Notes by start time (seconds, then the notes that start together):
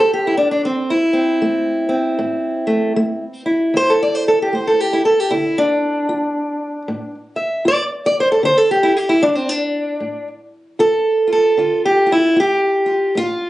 Already playing: A3 C4 G4
0.00 A4
0.13 G4
0.27 E4
0.37 D4
0.51 D4
0.65 E2 C4
0.90 E4
1.13 C4
1.42 A3
1.89 C4
2.19 A2
2.67 A3
2.96 A3
3.46 E4
3.74 E2 C5
3.90 A4
4.03 D5
4.15 C5
4.28 A4
4.42 G4
4.53 A3 C5
4.67 A4
4.80 G4
4.93 E4
5.05 A4
5.20 G4
5.31 D3 E4
5.58 D4
6.09 F4
6.88 A2
7.36 E5
7.65 F4 D5
8.06 D5
8.20 C5
8.32 A4
8.43 D3 C5
8.58 A4
8.71 G4
8.83 E4
8.97 G4
9.09 E4
9.23 D4 F4
9.35 C4
9.49 D4
10.00 A2
10.79 F4 A4
11.27 F4
11.33 A4
11.57 D3 F4
11.85 G4
12.06 F4
12.12 E4
12.36 F4 G4
12.86 F4
13.15 A2 F4